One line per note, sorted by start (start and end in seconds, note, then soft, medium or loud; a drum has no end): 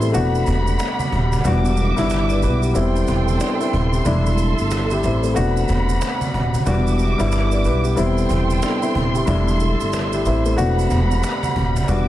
0.00 0.11 A1 loud
0.00 0.16 G3 medium
0.00 0.02 A3 medium
0.00 0.11 A3 medium
0.00 0.33 C4 medium
0.00 0.13 D4 medium
0.00 0.17 E4 loud
0.00 0.16 G4 medium
0.00 0.13 A4 medium
0.00 0.13 E5 medium
0.00 0.12 C6 medium
0.00 cajon slap soft
0.00 shaker medium
0.12 0.43 E1 loud
0.12 2.73 G3 medium
0.12 1.20 A3 medium
0.12 1.20 B3 medium
0.12 1.21 D4 medium
0.12 1.21 F#4 loud
0.12 1.43 F#5 medium
0.12 1.43 B5 medium
0.12 shaker medium
0.35 shaker soft
0.46 0.76 E1 loud
0.46 cajon bass loud
0.46 shaker soft
0.67 cajon slap soft
0.67 shaker medium
0.79 cajon slap loud
0.79 shaker medium
0.99 cajon bass medium
0.99 shaker medium
1.12 1.41 D#1 medium
1.12 cajon bass loud
1.32 cajon bass loud
1.32 shaker medium
1.44 1.92 E1 loud
1.44 1.85 G3 medium
1.44 1.86 B3 medium
1.44 1.86 D4 medium
1.44 1.87 F#4 loud
1.44 2.74 E5 medium
1.44 2.74 D6 medium
1.44 cajon bass loud
1.44 shaker medium
1.65 cajon slap soft
1.65 shaker medium
1.77 cajon slap soft
1.77 shaker medium
1.96 2.45 G1 medium
1.96 2.22 G3 medium
1.96 2.22 B3 medium
1.96 2.22 D4 medium
1.96 2.10 E4 loud
1.96 cajon bass loud
1.96 shaker medium
2.10 cajon slap loud
2.10 shaker medium
2.30 2.42 B4 medium
2.30 2.42 D5 medium
2.30 cajon slap soft
2.30 shaker medium
2.42 2.72 B1 loud
2.42 2.61 G4 medium
2.42 2.62 B4 medium
2.42 cajon slap soft
2.42 shaker soft
2.62 2.74 E4 medium
2.62 2.93 G4 medium
2.62 cajon slap soft
2.62 shaker medium
2.74 3.04 E1 loud
2.74 3.81 G3 medium
2.74 3.39 B3 medium
2.74 3.40 C4 medium
2.74 3.41 E4 loud
2.74 4.05 A4 medium
2.74 4.05 G5 medium
2.74 5.34 C6 medium
2.74 shaker medium
2.96 shaker soft
3.07 3.37 E1 loud
3.07 cajon bass loud
3.07 shaker soft
3.28 cajon slap soft
3.28 shaker medium
3.40 3.60 B3 medium
3.40 3.60 D4 medium
3.40 cajon slap loud
3.40 shaker medium
3.60 3.92 C4 medium
3.60 3.91 E4 medium
3.60 cajon slap soft
3.60 shaker medium
3.73 4.02 D#1 medium
3.73 cajon bass loud
3.93 4.05 E4 medium
3.93 4.24 G4 medium
3.93 cajon slap soft
3.93 shaker medium
4.04 4.53 E1 loud
4.04 4.46 G3 medium
4.04 4.38 A3 medium
4.04 4.38 D4 medium
4.04 4.39 E4 loud
4.04 5.36 A4 medium
4.04 5.36 E5 medium
4.04 cajon bass loud
4.04 shaker medium
4.26 cajon slap soft
4.26 shaker medium
4.38 cajon slap soft
4.38 shaker medium
4.58 4.99 G1 medium
4.58 cajon slap soft
4.58 shaker medium
4.71 cajon slap loud
4.71 shaker medium
4.90 5.03 E4 medium
4.90 5.03 G4 medium
4.90 cajon slap soft
4.90 shaker medium
5.03 5.33 A1 loud
5.03 5.22 C4 medium
5.03 5.24 E4 medium
5.03 cajon slap soft
5.03 shaker soft
5.23 5.32 A3 medium
5.23 5.54 C4 medium
5.23 cajon slap soft
5.23 shaker medium
5.34 5.65 E1 loud
5.34 6.65 G3 medium
5.34 6.42 A3 medium
5.34 6.42 B3 medium
5.34 6.42 D4 medium
5.34 6.43 F#4 loud
5.34 6.65 F#5 medium
5.34 6.65 B5 medium
5.34 shaker medium
5.57 shaker medium
5.68 5.98 E1 loud
5.68 cajon bass loud
5.68 shaker soft
5.88 cajon slap soft
5.88 shaker medium
6.01 cajon slap loud
6.01 shaker medium
6.21 cajon bass medium
6.21 shaker medium
6.34 6.63 D#1 medium
6.34 cajon bass loud
6.54 cajon bass medium
6.54 shaker medium
6.66 7.13 E1 loud
6.66 7.07 G3 medium
6.66 7.96 G3 medium
6.66 7.08 B3 medium
6.66 7.08 D4 medium
6.66 7.08 F#4 medium
6.66 7.95 E5 medium
6.66 7.96 D6 medium
6.66 cajon bass loud
6.66 shaker medium
6.87 cajon slap soft
6.87 shaker medium
6.99 cajon slap soft
6.99 shaker medium
7.18 7.66 G1 medium
7.18 7.43 G3 medium
7.18 7.44 B3 medium
7.18 7.44 D4 medium
7.18 7.32 E4 loud
7.18 cajon bass loud
7.18 shaker medium
7.32 cajon slap loud
7.32 shaker medium
7.51 7.64 B4 medium
7.51 7.64 D5 medium
7.51 cajon slap soft
7.51 shaker medium
7.64 7.93 B1 loud
7.64 7.82 G4 medium
7.64 7.84 B4 medium
7.64 cajon slap soft
7.64 shaker soft
7.84 7.96 E4 medium
7.84 8.15 G4 medium
7.84 cajon slap soft
7.84 shaker medium
7.96 8.26 E1 loud
7.96 9.03 G3 medium
7.96 8.61 B3 medium
7.96 8.62 C4 medium
7.96 8.62 E4 loud
7.96 9.26 A4 medium
7.96 9.27 G5 medium
7.96 10.56 C6 medium
7.96 shaker medium
8.18 shaker soft
8.29 8.59 E1 loud
8.29 cajon bass medium
8.29 shaker soft
8.50 cajon slap soft
8.50 shaker medium
8.62 8.82 B3 medium
8.62 8.82 D4 medium
8.62 cajon slap loud
8.62 shaker medium
8.82 9.13 C4 medium
8.82 9.13 E4 medium
8.82 cajon slap soft
8.82 shaker medium
8.95 9.24 D#1 medium
8.95 cajon bass loud
9.15 9.26 E4 medium
9.15 9.46 G4 medium
9.15 cajon slap soft
9.15 shaker medium
9.26 9.74 E1 loud
9.26 9.68 G3 medium
9.26 9.60 A3 medium
9.26 9.60 D4 medium
9.26 9.60 E4 loud
9.26 10.57 A4 medium
9.26 10.57 E5 medium
9.26 cajon bass loud
9.26 shaker medium
9.48 cajon slap soft
9.48 shaker medium
9.60 cajon slap soft
9.60 shaker medium
9.80 10.20 G1 medium
9.80 cajon slap soft
9.80 shaker medium
9.93 cajon slap loud
9.93 shaker medium
10.12 10.25 E4 medium
10.12 10.25 G4 medium
10.12 cajon slap soft
10.12 shaker medium
10.25 10.54 A1 loud
10.25 10.43 C4 medium
10.25 10.45 E4 medium
10.25 cajon slap soft
10.25 shaker soft
10.45 10.54 A3 medium
10.45 10.76 C4 medium
10.45 cajon slap soft
10.45 shaker medium
10.56 10.87 E1 loud
10.56 12.08 G3 medium
10.56 11.63 A3 medium
10.56 11.64 B3 medium
10.56 11.64 D4 medium
10.56 11.65 F#4 loud
10.56 11.87 F#5 medium
10.56 11.87 B5 medium
10.56 shaker medium
10.79 shaker soft
10.90 11.20 E1 loud
10.90 cajon bass loud
10.90 shaker soft
11.10 cajon slap soft
11.10 shaker medium
11.23 cajon slap loud
11.23 shaker medium
11.43 cajon bass medium
11.43 shaker medium
11.56 11.85 D#1 medium
11.56 cajon bass loud
11.76 cajon bass medium
11.76 shaker medium
11.88 12.08 E1 loud
11.88 12.08 G3 medium
11.88 12.08 B3 medium
11.88 12.08 D4 medium
11.88 12.08 F#4 loud
11.88 12.08 E5 medium
11.88 12.08 D6 loud
11.88 cajon bass loud
11.88 shaker medium